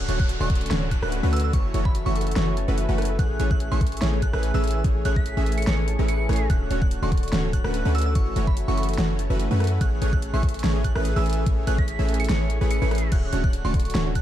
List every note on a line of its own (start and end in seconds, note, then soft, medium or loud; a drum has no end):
0.00 0.29 F#4 medium
0.00 0.21 A4 loud
0.00 0.26 C#5 medium
0.00 0.18 F#6 medium
0.00 downlifter medium
0.09 0.38 D1 loud
0.09 0.38 D3 medium
0.09 0.38 A3 medium
0.09 0.38 C#4 medium
0.09 0.38 F#4 medium
0.09 0.38 C#5 medium
0.09 0.91 A5 loud
0.09 closed hi-hat medium
0.20 0.61 D5 loud
0.20 0.38 F#6 medium
0.20 kick loud
0.29 0.70 F#4 medium
0.29 closed hi-hat medium
0.40 0.69 D1 loud
0.40 0.68 D3 medium
0.40 0.68 A3 medium
0.40 0.68 C#4 medium
0.40 0.68 F#4 medium
0.40 0.68 D5 loud
0.40 1.23 F#5 loud
0.40 0.52 C#6 loud
0.50 1.32 A4 loud
0.50 kick loud
0.50 closed hi-hat medium
0.55 closed hi-hat medium
0.61 0.88 D5 medium
0.61 closed hi-hat medium
0.66 closed hi-hat medium
0.71 1.00 D1 loud
0.71 1.00 D3 medium
0.71 1.00 A3 medium
0.71 1.00 C#4 medium
0.71 1.12 F#4 medium
0.71 1.00 F#4 medium
0.71 1.00 C#5 medium
0.71 snare loud
0.71 closed hi-hat medium
0.82 1.09 C#5 medium
0.91 1.74 A5 loud
0.91 0.99 F#6 medium
0.91 kick medium
0.91 closed hi-hat medium
1.02 1.21 D1 loud
1.02 1.21 D3 medium
1.02 1.21 A3 medium
1.02 1.21 C#4 medium
1.02 1.21 F#4 medium
1.02 1.21 B4 loud
1.02 1.44 D5 loud
1.02 1.09 F#6 medium
1.02 cross-stick medium
1.12 1.53 F#4 medium
1.12 closed hi-hat medium
1.23 1.52 D2 loud
1.23 1.51 D3 loud
1.23 1.51 A3 medium
1.23 1.51 C#4 medium
1.23 1.51 F#4 medium
1.23 1.51 B4 loud
1.23 2.06 F#5 loud
1.33 2.15 A4 loud
1.33 1.40 E6 medium
1.33 closed hi-hat medium
1.36 closed hi-hat medium
1.40 closed hi-hat medium
1.44 1.71 D5 medium
1.44 1.50 E6 medium
1.53 1.72 F#1 loud
1.53 1.72 E3 medium
1.53 1.72 A3 medium
1.53 1.72 C#4 medium
1.53 1.72 F#4 medium
1.53 1.72 C#5 medium
1.53 1.67 C#6 medium
1.53 kick loud
1.53 closed hi-hat medium
1.65 2.47 C#5 medium
1.74 2.04 F#1 loud
1.74 2.03 E3 medium
1.74 2.03 A3 medium
1.74 2.03 C#4 medium
1.74 2.03 F#4 medium
1.74 2.03 C#5 medium
1.74 2.57 A5 loud
1.74 closed hi-hat medium
1.85 2.26 E5 loud
1.85 1.97 B5 medium
1.85 kick loud
1.95 2.36 F#4 medium
1.95 closed hi-hat medium
2.06 2.34 F#1 loud
2.06 2.34 E3 medium
2.06 2.34 A3 medium
2.06 2.34 C#4 medium
2.06 2.34 F#4 medium
2.06 2.34 E5 medium
2.06 2.88 F#5 loud
2.06 2.12 C#6 medium
2.16 2.98 A4 loud
2.16 2.23 C#6 medium
2.16 closed hi-hat medium
2.21 closed hi-hat medium
2.27 2.68 E5 medium
2.27 closed hi-hat soft
2.31 closed hi-hat medium
2.36 2.66 F#1 loud
2.36 2.65 E3 medium
2.36 2.65 A3 medium
2.36 2.65 C#4 medium
2.36 2.65 F#4 medium
2.36 2.77 F#4 medium
2.36 2.65 C#5 medium
2.36 snare loud
2.36 closed hi-hat medium
2.47 3.30 C#5 medium
2.57 3.25 A5 loud
2.57 closed hi-hat medium
2.68 2.87 F#1 loud
2.68 2.86 E3 medium
2.68 2.86 A3 medium
2.68 2.86 C#4 medium
2.68 2.86 F#4 medium
2.68 2.86 B4 loud
2.68 3.09 E5 loud
2.78 5.21 F#4 medium
2.78 closed hi-hat medium
2.89 3.17 F#1 loud
2.89 3.17 E3 loud
2.89 3.17 A3 medium
2.89 3.17 C#4 medium
2.89 3.17 F#4 medium
2.89 3.17 B4 loud
2.89 4.49 F#5 loud
2.98 3.25 A4 loud
2.98 cross-stick medium
2.98 closed hi-hat medium
3.02 closed hi-hat medium
3.05 closed hi-hat medium
3.10 3.51 E5 medium
3.19 3.38 A1 loud
3.19 3.37 E3 medium
3.19 3.37 A3 medium
3.19 3.37 C#4 medium
3.19 3.46 G#4 medium
3.19 3.37 G#4 medium
3.19 3.37 C#5 medium
3.19 3.49 F#6 medium
3.19 kick loud
3.19 closed hi-hat medium
3.30 4.13 C#5 medium
3.40 3.69 A1 loud
3.40 3.69 E3 medium
3.40 3.69 A3 medium
3.40 3.69 C#4 medium
3.40 3.69 G#4 medium
3.40 3.69 C#5 medium
3.40 3.66 A5 loud
3.40 closed hi-hat medium
3.51 3.92 E5 loud
3.51 3.69 F#6 medium
3.51 kick loud
3.60 3.87 G#4 medium
3.60 closed hi-hat medium
3.72 4.00 A1 medium
3.72 3.99 E3 medium
3.72 3.99 A3 medium
3.72 3.99 C#4 medium
3.72 3.99 G#4 medium
3.72 3.99 E5 loud
3.72 3.87 G#5 loud
3.72 3.83 C#6 medium
3.81 4.08 A4 loud
3.81 kick loud
3.81 closed hi-hat medium
3.87 closed hi-hat medium
3.92 4.33 E5 medium
3.92 closed hi-hat soft
3.97 closed hi-hat medium
4.02 4.31 A1 loud
4.02 4.31 E3 medium
4.02 4.31 A3 medium
4.02 4.31 C#4 medium
4.02 4.31 G#4 medium
4.02 4.28 G#4 medium
4.02 4.31 C#5 loud
4.02 snare loud
4.02 closed hi-hat medium
4.13 4.95 C#5 medium
4.22 4.49 A5 loud
4.22 4.30 F#6 medium
4.22 kick medium
4.22 closed hi-hat medium
4.33 4.52 A1 loud
4.33 4.52 E3 medium
4.33 4.52 A3 medium
4.33 4.52 C#4 medium
4.33 4.52 G#4 medium
4.33 4.52 B4 loud
4.33 4.75 E5 loud
4.33 4.40 F#6 medium
4.33 cross-stick medium
4.43 4.70 G#4 medium
4.43 closed hi-hat medium
4.54 4.83 A1 loud
4.54 4.82 E3 loud
4.54 4.82 A3 loud
4.54 4.82 C#4 medium
4.54 4.82 G#4 medium
4.54 4.82 B4 loud
4.54 4.70 G#5 loud
4.54 4.66 E6 medium
4.64 4.91 A4 loud
4.64 closed hi-hat soft
4.67 closed hi-hat medium
4.71 closed hi-hat medium
4.75 5.16 E5 medium
4.84 5.03 A1 loud
4.84 5.03 C#4 medium
4.84 5.03 G#4 medium
4.84 5.03 C#5 medium
4.84 kick loud
4.84 closed hi-hat medium
4.96 5.78 C#5 medium
5.05 5.35 A1 loud
5.05 5.34 E3 medium
5.05 5.34 A3 medium
5.05 5.34 C#4 medium
5.05 5.34 G#4 medium
5.05 5.34 C#5 medium
5.05 5.32 A5 loud
5.05 5.14 F#6 medium
5.05 closed hi-hat medium
5.16 5.57 E5 loud
5.16 5.28 B6 medium
5.16 kick loud
5.26 5.53 G#4 medium
5.26 closed hi-hat medium
5.37 5.65 A1 medium
5.37 5.65 E3 medium
5.37 5.65 A3 medium
5.37 5.65 C#4 medium
5.37 5.65 G#4 medium
5.37 5.65 E5 medium
5.37 5.53 G#5 loud
5.46 5.73 A4 loud
5.46 closed hi-hat soft
5.52 closed hi-hat medium
5.58 5.99 E5 medium
5.58 5.70 C#7 medium
5.58 closed hi-hat soft
5.62 closed hi-hat medium
5.67 5.97 A1 loud
5.67 5.96 E3 medium
5.67 5.96 A3 medium
5.67 5.96 C#4 medium
5.67 5.96 G#4 medium
5.67 5.94 G#4 medium
5.67 5.96 C#5 medium
5.67 snare loud
5.67 closed hi-hat medium
5.79 6.61 C#5 medium
5.88 6.15 A5 loud
5.88 closed hi-hat medium
5.99 6.27 A1 loud
5.99 6.27 E3 medium
5.99 6.27 A3 medium
5.99 6.27 C#4 medium
5.99 6.27 G#4 medium
5.99 6.27 B4 loud
5.99 6.40 E5 loud
6.08 6.35 G#4 medium
6.08 6.50 C#7 medium
6.08 closed hi-hat medium
6.20 6.35 G#5 loud
6.29 6.48 A1 loud
6.29 6.48 E3 medium
6.29 6.48 A3 medium
6.29 6.48 C#4 medium
6.29 6.48 G#4 medium
6.29 7.11 A4 loud
6.29 6.48 C#5 loud
6.29 cross-stick medium
6.29 closed hi-hat soft
6.33 closed hi-hat medium
6.36 closed hi-hat medium
6.40 8.13 E5 medium
6.50 6.69 D1 loud
6.50 6.68 D3 medium
6.50 6.68 A3 medium
6.50 6.68 C#4 medium
6.50 6.91 F#4 medium
6.50 6.68 F#4 medium
6.50 6.68 C#5 medium
6.50 6.80 F#6 medium
6.50 kick loud
6.50 closed hi-hat medium
6.61 6.88 C#5 medium
6.71 7.00 D1 loud
6.71 7.00 D3 medium
6.71 7.00 A3 medium
6.71 7.00 C#4 medium
6.71 7.00 F#4 medium
6.71 7.00 C#5 medium
6.71 7.53 A5 loud
6.71 closed hi-hat medium
6.82 7.23 D5 loud
6.82 7.00 F#6 medium
6.82 kick loud
6.91 7.32 F#4 medium
6.91 closed hi-hat medium
7.02 7.31 D1 loud
7.02 7.30 D3 medium
7.02 7.30 A3 medium
7.02 7.30 C#4 medium
7.02 7.30 F#4 medium
7.02 7.30 D5 medium
7.02 7.85 F#5 loud
7.02 7.14 C#6 medium
7.12 7.94 A4 loud
7.12 kick loud
7.12 closed hi-hat soft
7.17 closed hi-hat medium
7.23 7.50 D5 medium
7.23 closed hi-hat soft
7.28 closed hi-hat medium
7.33 7.62 D1 loud
7.33 7.62 D3 medium
7.33 7.62 A3 medium
7.33 7.62 C#4 medium
7.33 7.74 F#4 medium
7.33 7.62 F#4 medium
7.33 7.62 C#5 medium
7.33 snare loud
7.33 closed hi-hat medium
7.44 7.70 C#5 medium
7.53 8.36 A5 loud
7.53 7.61 F#6 medium
7.53 kick medium
7.53 closed hi-hat medium
7.64 7.83 D1 loud
7.64 7.83 D3 medium
7.64 7.83 A3 medium
7.64 7.83 C#4 medium
7.64 7.83 F#4 medium
7.64 7.83 B4 loud
7.64 8.05 D5 loud
7.64 7.71 F#6 medium
7.64 cross-stick medium
7.74 8.15 F#4 medium
7.74 closed hi-hat medium
7.85 8.17 D2 loud
7.85 8.13 D3 loud
7.85 8.13 A3 medium
7.85 8.13 C#4 medium
7.85 8.13 F#4 medium
7.85 8.13 B4 loud
7.85 8.67 F#5 loud
7.95 8.77 A4 loud
7.95 8.02 E6 medium
7.95 closed hi-hat soft
7.98 closed hi-hat medium
8.02 closed hi-hat medium
8.06 8.33 D5 medium
8.06 8.12 E6 medium
8.15 8.34 F#1 loud
8.15 8.34 E3 medium
8.15 8.34 A3 medium
8.15 8.34 C#4 medium
8.15 8.56 F#4 medium
8.15 8.34 F#4 medium
8.15 8.34 C#5 medium
8.15 8.29 C#6 medium
8.15 kick loud
8.15 closed hi-hat medium
8.27 9.09 C#5 medium
8.36 8.66 F#1 loud
8.36 8.65 E3 medium
8.36 8.65 A3 medium
8.36 8.65 C#4 medium
8.36 8.65 F#4 medium
8.36 8.65 C#5 medium
8.36 9.18 A5 loud
8.36 closed hi-hat medium
8.47 8.88 E5 loud
8.47 8.59 B5 medium
8.47 kick loud
8.57 8.98 F#4 medium
8.57 closed hi-hat medium
8.68 8.96 F#1 loud
8.68 8.96 E3 medium
8.68 8.96 A3 medium
8.68 8.96 C#4 medium
8.68 8.96 F#4 medium
8.68 8.96 E5 medium
8.68 9.50 F#5 loud
8.68 8.74 C#6 medium
8.77 9.60 A4 loud
8.77 8.85 C#6 medium
8.77 closed hi-hat medium
8.83 closed hi-hat medium
8.89 9.30 E5 medium
8.89 closed hi-hat soft
8.93 closed hi-hat medium
8.98 9.28 F#1 loud
8.98 9.27 E3 medium
8.98 9.27 A3 medium
8.98 9.27 C#4 medium
8.98 9.39 F#4 medium
8.98 9.27 F#4 medium
8.98 9.28 C#5 medium
8.98 snare loud
9.09 9.92 C#5 medium
9.19 9.87 A5 loud
9.19 closed hi-hat medium
9.30 9.49 F#1 loud
9.30 9.48 E3 medium
9.30 9.48 A3 medium
9.30 9.48 C#4 medium
9.30 9.48 F#4 medium
9.30 9.48 B4 loud
9.30 9.71 E5 loud
9.40 11.83 F#4 medium
9.40 closed hi-hat medium
9.51 9.79 F#2 loud
9.51 9.79 E3 loud
9.51 9.79 A3 medium
9.51 9.79 C#4 medium
9.51 9.79 F#4 medium
9.51 9.79 B4 loud
9.51 11.11 F#5 loud
9.60 9.87 A4 loud
9.60 cross-stick medium
9.60 closed hi-hat soft
9.64 closed hi-hat medium
9.67 closed hi-hat medium
9.71 10.13 E5 medium
9.81 10.00 A1 loud
9.81 9.99 E3 medium
9.81 9.99 A3 medium
9.81 9.99 C#4 medium
9.81 10.08 G#4 medium
9.81 9.99 G#4 medium
9.81 9.99 C#5 medium
9.81 10.11 F#6 medium
9.81 kick loud
9.81 closed hi-hat medium
9.92 10.75 C#5 medium
10.02 10.31 A1 loud
10.02 10.31 E3 medium
10.02 10.31 A3 medium
10.02 10.31 C#4 medium
10.02 10.31 G#4 medium
10.02 10.31 C#5 medium
10.02 10.28 A5 loud
10.02 closed hi-hat medium
10.13 10.54 E5 loud
10.13 10.31 F#6 loud
10.13 kick loud
10.22 10.49 G#4 medium
10.22 closed hi-hat medium
10.33 10.62 A1 loud
10.33 10.62 E3 medium
10.33 10.62 A3 medium
10.33 10.62 C#4 medium
10.33 10.62 G#4 medium
10.33 10.62 E5 medium
10.33 10.49 G#5 loud
10.33 10.45 C#6 medium
10.43 10.70 A4 loud
10.43 kick loud
10.43 closed hi-hat medium
10.49 closed hi-hat medium
10.54 10.95 E5 medium
10.54 closed hi-hat medium
10.59 closed hi-hat medium
10.64 10.93 A1 loud
10.64 10.93 E3 medium
10.64 10.93 A3 medium
10.64 10.93 C#4 medium
10.64 10.93 G#4 medium
10.64 10.91 G#4 medium
10.64 10.93 C#5 medium
10.64 snare loud
10.64 closed hi-hat medium
10.75 11.57 C#5 medium
10.84 11.11 A5 loud
10.84 10.92 F#6 medium
10.84 kick medium
10.84 closed hi-hat medium
10.95 11.14 A1 loud
10.95 11.14 E3 medium
10.95 11.14 A3 medium
10.95 11.14 C#4 medium
10.95 11.14 G#4 medium
10.95 11.14 B4 loud
10.95 11.37 E5 loud
10.95 11.02 F#6 medium
10.95 cross-stick medium
11.05 11.32 G#4 medium
11.05 closed hi-hat medium
11.16 11.45 A1 loud
11.16 11.44 E3 loud
11.16 11.44 A3 medium
11.16 11.44 C#4 medium
11.16 11.44 G#4 medium
11.16 11.44 B4 loud
11.16 11.32 G#5 loud
11.16 11.28 E6 medium
11.26 11.53 A4 loud
11.26 closed hi-hat medium
11.30 closed hi-hat medium
11.33 closed hi-hat medium
11.37 11.78 E5 medium
11.46 11.65 A1 medium
11.46 11.65 A3 medium
11.46 11.65 C#4 medium
11.46 11.65 G#4 medium
11.46 11.73 G#4 medium
11.46 11.65 C#5 medium
11.46 kick loud
11.46 closed hi-hat medium
11.58 12.40 C#5 medium
11.67 11.97 A1 loud
11.67 11.96 E3 medium
11.67 11.96 A3 medium
11.67 11.96 C#4 medium
11.67 11.96 G#4 medium
11.67 11.96 C#5 medium
11.67 11.94 A5 loud
11.67 11.76 F#6 loud
11.67 closed hi-hat medium
11.78 12.19 E5 loud
11.78 11.90 B6 medium
11.78 kick loud
11.88 12.15 G#4 medium
11.88 closed hi-hat medium
11.99 12.27 A1 loud
11.99 12.27 E3 medium
11.99 12.27 A3 medium
11.99 12.27 C#4 medium
11.99 12.27 G#4 medium
11.99 12.27 E5 medium
11.99 12.15 G#5 loud
12.09 12.35 A4 loud
12.09 closed hi-hat medium
12.14 closed hi-hat medium
12.20 12.70 E5 medium
12.20 12.32 C#7 medium
12.20 closed hi-hat medium
12.24 closed hi-hat medium
12.29 12.59 A1 loud
12.29 12.58 E3 medium
12.29 12.58 A3 medium
12.29 12.58 C#4 medium
12.29 12.61 G#4 medium
12.29 12.58 G#4 medium
12.29 12.58 C#5 medium
12.29 snare loud
12.29 closed hi-hat medium
12.41 12.50 C#5 medium
12.50 12.82 C#5 medium
12.50 closed hi-hat medium
12.61 12.80 A1 loud
12.61 12.79 E3 medium
12.61 12.79 A3 medium
12.61 12.79 C#4 medium
12.61 12.79 G#4 medium
12.61 12.91 G#4 loud
12.61 12.79 B4 loud
12.71 13.02 E5 medium
12.71 13.12 C#7 medium
12.71 closed hi-hat medium
12.82 13.10 A1 loud
12.82 13.10 E3 loud
12.82 13.10 A3 medium
12.82 13.10 C#4 medium
12.82 13.10 G#4 medium
12.82 13.10 B4 loud
12.82 13.23 C#5 medium
12.91 13.39 G#4 loud
12.91 cross-stick medium
12.91 closed hi-hat medium
12.95 closed hi-hat medium
12.98 closed hi-hat medium
13.03 14.22 E5 loud
13.12 13.31 D1 medium
13.12 13.31 D3 medium
13.12 13.31 A3 medium
13.12 13.31 C#4 medium
13.12 13.31 F#4 medium
13.12 13.53 F#4 medium
13.12 13.31 C#5 medium
13.12 13.42 F#6 medium
13.12 kick loud
13.12 closed hi-hat medium
13.12 crash medium
13.23 13.50 C#5 medium
13.33 13.62 D1 loud
13.33 13.62 D3 medium
13.33 13.62 A3 medium
13.33 13.62 C#4 medium
13.33 13.62 F#4 medium
13.33 13.62 C#5 medium
13.33 14.15 A5 loud
13.33 closed hi-hat medium
13.44 13.85 D5 loud
13.44 13.62 F#6 loud
13.44 kick loud
13.53 13.95 F#4 medium
13.53 closed hi-hat medium
13.65 13.93 D1 medium
13.65 13.93 D3 medium
13.65 13.93 A3 medium
13.65 13.93 C#4 medium
13.65 13.93 F#4 medium
13.65 13.93 D5 medium
13.65 14.22 F#5 loud
13.65 13.76 C#6 medium
13.74 14.22 A4 loud
13.74 kick loud
13.74 closed hi-hat medium
13.80 closed hi-hat medium
13.85 14.12 D5 medium
13.85 closed hi-hat soft
13.90 closed hi-hat medium
13.95 14.22 D1 loud
13.95 14.22 D3 medium
13.95 14.22 A3 medium
13.95 14.22 C#4 medium
13.95 14.22 F#4 medium
13.95 14.22 C#5 medium
13.95 snare loud
13.95 closed hi-hat medium
14.06 14.22 C#5 medium
14.15 14.22 A5 loud
14.15 14.22 F#6 medium
14.15 kick medium
14.15 closed hi-hat medium